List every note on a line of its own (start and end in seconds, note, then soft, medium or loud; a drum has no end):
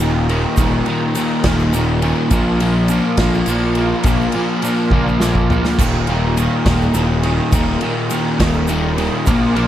0.00 0.45 D#1 loud
0.00 0.28 D#2 medium
0.00 0.28 A#2 loud
0.00 0.29 D#3 loud
0.00 5.74 A#3 medium
0.00 2.27 G4 medium
0.00 2.28 D#5 medium
0.00 ride medium
0.29 0.57 D#2 medium
0.29 0.57 A#2 medium
0.29 0.57 D#3 medium
0.29 ride medium
0.57 0.81 D#1 loud
0.57 0.87 D#2 loud
0.57 0.87 A#2 loud
0.57 0.88 D#3 loud
0.57 kick loud
0.57 ride loud
0.57 shaker loud
0.86 1.16 D#2 medium
0.86 1.17 A#2 medium
0.86 1.16 D#3 loud
0.86 ride medium
1.15 1.44 D#2 medium
1.15 1.45 A#2 medium
1.15 1.45 D#3 loud
1.15 ride medium
1.15 shaker loud
1.44 2.12 D#1 loud
1.44 1.73 D#2 loud
1.44 1.74 A#2 medium
1.44 1.73 D#3 loud
1.44 kick medium
1.44 snare loud
1.44 ride loud
1.59 shaker soft
1.73 2.01 D#2 medium
1.73 2.02 A#2 medium
1.73 2.02 D#3 medium
1.73 ride medium
1.73 shaker loud
2.02 2.30 D#2 medium
2.02 2.30 A#2 medium
2.02 2.30 D#3 loud
2.02 ride medium
2.30 2.99 A#1 loud
2.30 2.60 A#2 loud
2.30 2.61 F3 loud
2.30 2.62 A#3 loud
2.30 5.75 F4 medium
2.30 5.75 D5 medium
2.30 kick loud
2.30 ride loud
2.30 shaker loud
2.60 2.90 A#2 medium
2.60 2.90 F3 medium
2.60 2.91 A#3 medium
2.60 ride medium
2.88 3.18 A#2 loud
2.88 3.18 F3 loud
2.88 3.20 A#3 loud
2.88 ride medium
2.88 shaker loud
3.17 3.41 A#1 loud
3.17 3.47 A#2 medium
3.17 3.47 F3 loud
3.17 3.47 A#3 loud
3.17 kick loud
3.17 snare loud
3.17 ride loud
3.34 shaker soft
3.46 3.93 A#1 loud
3.46 3.76 A#2 medium
3.46 3.76 F3 loud
3.46 3.78 A#3 loud
3.46 ride loud
3.46 shaker loud
3.75 4.05 A#2 medium
3.75 4.05 F3 medium
3.75 4.07 A#3 loud
3.75 ride medium
4.03 4.27 A#1 loud
4.03 4.34 A#2 loud
4.03 4.34 F3 loud
4.03 4.36 A#3 loud
4.03 kick loud
4.03 ride loud
4.03 shaker loud
4.21 shaker soft
4.32 4.62 A#2 medium
4.32 4.62 F3 loud
4.32 ride medium
4.36 4.63 A#3 loud
4.62 4.91 A#2 medium
4.62 4.92 F3 loud
4.62 4.93 A#3 loud
4.62 ride medium
4.62 shaker loud
4.90 5.59 A#1 loud
4.90 5.22 A#2 medium
4.90 5.21 F3 medium
4.90 5.23 A#3 loud
4.90 kick medium
4.90 high tom medium
5.08 shaker soft
5.21 5.50 A#2 medium
5.21 5.50 F3 medium
5.21 5.52 A#3 medium
5.21 snare medium
5.21 shaker loud
5.35 kick medium
5.50 5.78 A#2 medium
5.50 5.78 F3 medium
5.50 9.02 A#3 loud
5.50 floor tom loud
5.50 shaker soft
5.65 snare loud
5.79 6.47 D#1 loud
5.79 6.09 D#2 loud
5.79 6.08 A#2 loud
5.79 6.10 D#3 loud
5.79 9.68 A#3 medium
5.79 9.25 G4 medium
5.79 9.25 D#5 medium
5.79 kick loud
5.79 crash loud
5.79 splash medium
5.79 shaker loud
6.07 6.36 D#2 medium
6.07 6.35 A#2 medium
6.07 6.36 D#3 loud
6.07 ride medium
6.37 6.65 D#2 medium
6.37 6.65 A#2 loud
6.37 6.66 D#3 loud
6.37 ride medium
6.37 shaker loud
6.66 6.89 D#1 loud
6.66 6.94 D#2 medium
6.66 6.94 A#2 medium
6.66 6.95 D#3 loud
6.66 kick medium
6.66 snare loud
6.66 ride loud
6.81 shaker soft
6.94 7.40 D#1 medium
6.94 7.23 D#2 medium
6.94 7.24 A#2 medium
6.94 7.23 D#3 loud
6.94 ride medium
6.94 shaker loud
7.23 7.52 D#2 medium
7.23 7.53 A#2 loud
7.23 7.53 D#3 medium
7.23 ride medium
7.52 7.76 D#1 loud
7.52 7.82 D#2 loud
7.52 7.82 A#2 loud
7.52 7.83 D#3 loud
7.52 kick loud
7.52 ride loud
7.52 shaker loud
7.81 8.10 D#2 loud
7.81 8.10 A#2 medium
7.81 8.10 D#3 medium
7.81 ride medium
8.10 8.39 D#2 loud
8.10 8.39 A#2 loud
8.10 8.40 D#3 loud
8.10 ride loud
8.10 shaker medium
8.40 9.08 D#1 loud
8.40 8.68 D#2 medium
8.40 8.68 A#2 medium
8.40 8.69 D#3 loud
8.40 kick medium
8.40 snare loud
8.40 ride loud
8.53 shaker soft
8.68 8.97 D#2 medium
8.68 8.98 A#2 medium
8.68 8.99 D#3 medium
8.68 ride medium
8.68 shaker loud
8.98 9.26 D#2 medium
8.98 9.25 A#2 medium
8.98 9.26 D#3 loud
8.98 ride medium
9.26 9.68 A#1 loud
9.26 9.55 A#2 loud
9.26 9.55 F3 loud
9.26 9.56 A#3 loud
9.26 9.68 F4 medium
9.26 9.68 D5 medium
9.26 kick loud
9.26 ride loud
9.26 shaker loud
9.56 9.68 A#2 medium
9.56 9.68 F3 medium
9.56 9.68 A#3 loud
9.56 ride medium